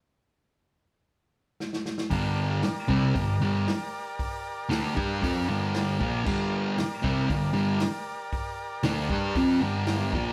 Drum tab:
CC |----------------|----------------|----------------|x---------------|
HH |----------------|o---o---o---o---|o---o---o---o---|----o---o---o---|
SD |------------oooo|----o-------o---|----o-------o---|----o-------o---|
BD |----------------|o-----o-o-------|o-----o-o-----o-|o-----o-o-------|

CC |----------------|
HH |o---o---o---o---|
SD |----o-------o---|
BD |o-----o-o-----o-|